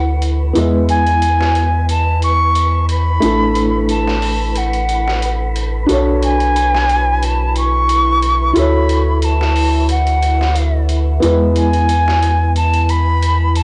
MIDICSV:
0, 0, Header, 1, 7, 480
1, 0, Start_track
1, 0, Tempo, 666667
1, 401, Time_signature, 4, 2, 24, 8
1, 9814, End_track
2, 0, Start_track
2, 0, Title_t, "Flute"
2, 0, Program_c, 0, 73
2, 0, Note_on_c, 0, 78, 78
2, 162, Note_off_c, 0, 78, 0
2, 645, Note_on_c, 0, 80, 94
2, 1334, Note_off_c, 0, 80, 0
2, 1365, Note_on_c, 0, 81, 89
2, 1586, Note_off_c, 0, 81, 0
2, 1608, Note_on_c, 0, 85, 94
2, 2056, Note_off_c, 0, 85, 0
2, 2086, Note_on_c, 0, 83, 100
2, 2775, Note_off_c, 0, 83, 0
2, 2809, Note_on_c, 0, 81, 82
2, 3291, Note_on_c, 0, 78, 75
2, 3301, Note_off_c, 0, 81, 0
2, 4006, Note_off_c, 0, 78, 0
2, 4490, Note_on_c, 0, 80, 94
2, 5212, Note_on_c, 0, 81, 87
2, 5223, Note_off_c, 0, 80, 0
2, 5447, Note_off_c, 0, 81, 0
2, 5452, Note_on_c, 0, 85, 97
2, 6171, Note_on_c, 0, 83, 94
2, 6182, Note_off_c, 0, 85, 0
2, 6653, Note_on_c, 0, 81, 84
2, 6663, Note_off_c, 0, 83, 0
2, 7124, Note_off_c, 0, 81, 0
2, 7128, Note_on_c, 0, 78, 86
2, 7816, Note_off_c, 0, 78, 0
2, 8323, Note_on_c, 0, 80, 91
2, 9013, Note_off_c, 0, 80, 0
2, 9043, Note_on_c, 0, 81, 102
2, 9287, Note_on_c, 0, 83, 102
2, 9297, Note_off_c, 0, 81, 0
2, 9764, Note_on_c, 0, 81, 98
2, 9775, Note_off_c, 0, 83, 0
2, 9814, Note_off_c, 0, 81, 0
2, 9814, End_track
3, 0, Start_track
3, 0, Title_t, "Synth texture"
3, 0, Program_c, 1, 99
3, 0, Note_on_c, 1, 71, 78
3, 9814, Note_off_c, 1, 71, 0
3, 9814, End_track
4, 0, Start_track
4, 0, Title_t, "Felt piano"
4, 0, Program_c, 2, 0
4, 0, Note_on_c, 2, 64, 62
4, 0, Note_on_c, 2, 66, 56
4, 0, Note_on_c, 2, 69, 57
4, 0, Note_on_c, 2, 73, 71
4, 365, Note_off_c, 2, 64, 0
4, 372, Note_off_c, 2, 66, 0
4, 379, Note_off_c, 2, 69, 0
4, 384, Note_on_c, 2, 59, 61
4, 386, Note_off_c, 2, 73, 0
4, 395, Note_on_c, 2, 64, 62
4, 410, Note_on_c, 2, 56, 62
4, 423, Note_on_c, 2, 71, 66
4, 2285, Note_off_c, 2, 59, 0
4, 2291, Note_off_c, 2, 64, 0
4, 2298, Note_off_c, 2, 56, 0
4, 2304, Note_on_c, 2, 57, 63
4, 2305, Note_off_c, 2, 71, 0
4, 2318, Note_on_c, 2, 62, 56
4, 2330, Note_on_c, 2, 64, 59
4, 2346, Note_on_c, 2, 69, 67
4, 4206, Note_off_c, 2, 57, 0
4, 4211, Note_off_c, 2, 62, 0
4, 4218, Note_off_c, 2, 64, 0
4, 4222, Note_on_c, 2, 62, 66
4, 4226, Note_off_c, 2, 69, 0
4, 4237, Note_on_c, 2, 66, 59
4, 4251, Note_on_c, 2, 69, 56
4, 4263, Note_on_c, 2, 73, 72
4, 6124, Note_off_c, 2, 62, 0
4, 6132, Note_off_c, 2, 66, 0
4, 6139, Note_off_c, 2, 69, 0
4, 6145, Note_off_c, 2, 73, 0
4, 6145, Note_on_c, 2, 64, 67
4, 6158, Note_on_c, 2, 66, 58
4, 6171, Note_on_c, 2, 69, 57
4, 6184, Note_on_c, 2, 73, 69
4, 8046, Note_off_c, 2, 64, 0
4, 8052, Note_off_c, 2, 66, 0
4, 8059, Note_off_c, 2, 69, 0
4, 8064, Note_on_c, 2, 59, 66
4, 8065, Note_off_c, 2, 73, 0
4, 8077, Note_on_c, 2, 64, 60
4, 8092, Note_on_c, 2, 56, 59
4, 8104, Note_on_c, 2, 71, 73
4, 9814, Note_off_c, 2, 56, 0
4, 9814, Note_off_c, 2, 59, 0
4, 9814, Note_off_c, 2, 64, 0
4, 9814, Note_off_c, 2, 71, 0
4, 9814, End_track
5, 0, Start_track
5, 0, Title_t, "Ambient pad"
5, 0, Program_c, 3, 92
5, 0, Note_on_c, 3, 64, 69
5, 4232, Note_off_c, 3, 64, 0
5, 4241, Note_on_c, 3, 64, 74
5, 9814, Note_off_c, 3, 64, 0
5, 9814, End_track
6, 0, Start_track
6, 0, Title_t, "Sub bass"
6, 0, Program_c, 4, 38
6, 0, Note_on_c, 4, 38, 76
6, 379, Note_off_c, 4, 38, 0
6, 401, Note_on_c, 4, 40, 71
6, 2298, Note_off_c, 4, 40, 0
6, 2321, Note_on_c, 4, 33, 76
6, 4218, Note_off_c, 4, 33, 0
6, 4242, Note_on_c, 4, 35, 77
6, 6139, Note_off_c, 4, 35, 0
6, 6164, Note_on_c, 4, 38, 82
6, 8060, Note_off_c, 4, 38, 0
6, 8083, Note_on_c, 4, 40, 73
6, 9814, Note_off_c, 4, 40, 0
6, 9814, End_track
7, 0, Start_track
7, 0, Title_t, "Drums"
7, 158, Note_on_c, 9, 42, 60
7, 230, Note_off_c, 9, 42, 0
7, 399, Note_on_c, 9, 42, 67
7, 471, Note_off_c, 9, 42, 0
7, 639, Note_on_c, 9, 42, 58
7, 711, Note_off_c, 9, 42, 0
7, 767, Note_on_c, 9, 42, 34
7, 839, Note_off_c, 9, 42, 0
7, 879, Note_on_c, 9, 42, 73
7, 951, Note_off_c, 9, 42, 0
7, 1013, Note_on_c, 9, 38, 39
7, 1085, Note_off_c, 9, 38, 0
7, 1117, Note_on_c, 9, 42, 54
7, 1189, Note_off_c, 9, 42, 0
7, 1360, Note_on_c, 9, 42, 79
7, 1432, Note_off_c, 9, 42, 0
7, 1600, Note_on_c, 9, 42, 58
7, 1672, Note_off_c, 9, 42, 0
7, 1838, Note_on_c, 9, 42, 73
7, 1910, Note_off_c, 9, 42, 0
7, 2079, Note_on_c, 9, 42, 58
7, 2151, Note_off_c, 9, 42, 0
7, 2318, Note_on_c, 9, 42, 73
7, 2390, Note_off_c, 9, 42, 0
7, 2558, Note_on_c, 9, 42, 62
7, 2630, Note_off_c, 9, 42, 0
7, 2800, Note_on_c, 9, 42, 68
7, 2872, Note_off_c, 9, 42, 0
7, 2934, Note_on_c, 9, 38, 37
7, 3006, Note_off_c, 9, 38, 0
7, 3039, Note_on_c, 9, 46, 64
7, 3111, Note_off_c, 9, 46, 0
7, 3280, Note_on_c, 9, 42, 78
7, 3352, Note_off_c, 9, 42, 0
7, 3409, Note_on_c, 9, 42, 38
7, 3481, Note_off_c, 9, 42, 0
7, 3520, Note_on_c, 9, 42, 56
7, 3592, Note_off_c, 9, 42, 0
7, 3655, Note_on_c, 9, 38, 35
7, 3727, Note_off_c, 9, 38, 0
7, 3761, Note_on_c, 9, 42, 80
7, 3833, Note_off_c, 9, 42, 0
7, 4001, Note_on_c, 9, 42, 61
7, 4073, Note_off_c, 9, 42, 0
7, 4241, Note_on_c, 9, 42, 72
7, 4313, Note_off_c, 9, 42, 0
7, 4482, Note_on_c, 9, 42, 60
7, 4554, Note_off_c, 9, 42, 0
7, 4610, Note_on_c, 9, 42, 35
7, 4682, Note_off_c, 9, 42, 0
7, 4724, Note_on_c, 9, 42, 76
7, 4796, Note_off_c, 9, 42, 0
7, 4857, Note_on_c, 9, 38, 40
7, 4929, Note_off_c, 9, 38, 0
7, 4963, Note_on_c, 9, 42, 57
7, 5035, Note_off_c, 9, 42, 0
7, 5203, Note_on_c, 9, 42, 80
7, 5275, Note_off_c, 9, 42, 0
7, 5441, Note_on_c, 9, 42, 58
7, 5513, Note_off_c, 9, 42, 0
7, 5682, Note_on_c, 9, 42, 76
7, 5754, Note_off_c, 9, 42, 0
7, 5921, Note_on_c, 9, 42, 62
7, 5993, Note_off_c, 9, 42, 0
7, 6161, Note_on_c, 9, 42, 71
7, 6233, Note_off_c, 9, 42, 0
7, 6402, Note_on_c, 9, 42, 60
7, 6474, Note_off_c, 9, 42, 0
7, 6639, Note_on_c, 9, 42, 70
7, 6711, Note_off_c, 9, 42, 0
7, 6775, Note_on_c, 9, 38, 36
7, 6847, Note_off_c, 9, 38, 0
7, 6882, Note_on_c, 9, 46, 65
7, 6954, Note_off_c, 9, 46, 0
7, 7120, Note_on_c, 9, 42, 78
7, 7192, Note_off_c, 9, 42, 0
7, 7249, Note_on_c, 9, 42, 38
7, 7321, Note_off_c, 9, 42, 0
7, 7362, Note_on_c, 9, 42, 61
7, 7434, Note_off_c, 9, 42, 0
7, 7495, Note_on_c, 9, 38, 35
7, 7567, Note_off_c, 9, 38, 0
7, 7599, Note_on_c, 9, 42, 74
7, 7671, Note_off_c, 9, 42, 0
7, 7840, Note_on_c, 9, 42, 60
7, 7912, Note_off_c, 9, 42, 0
7, 8082, Note_on_c, 9, 42, 73
7, 8154, Note_off_c, 9, 42, 0
7, 8322, Note_on_c, 9, 42, 60
7, 8394, Note_off_c, 9, 42, 0
7, 8448, Note_on_c, 9, 42, 36
7, 8520, Note_off_c, 9, 42, 0
7, 8560, Note_on_c, 9, 42, 74
7, 8632, Note_off_c, 9, 42, 0
7, 8697, Note_on_c, 9, 38, 40
7, 8769, Note_off_c, 9, 38, 0
7, 8802, Note_on_c, 9, 42, 68
7, 8874, Note_off_c, 9, 42, 0
7, 9042, Note_on_c, 9, 42, 60
7, 9114, Note_off_c, 9, 42, 0
7, 9169, Note_on_c, 9, 42, 39
7, 9241, Note_off_c, 9, 42, 0
7, 9281, Note_on_c, 9, 42, 59
7, 9353, Note_off_c, 9, 42, 0
7, 9522, Note_on_c, 9, 42, 75
7, 9594, Note_off_c, 9, 42, 0
7, 9760, Note_on_c, 9, 42, 64
7, 9814, Note_off_c, 9, 42, 0
7, 9814, End_track
0, 0, End_of_file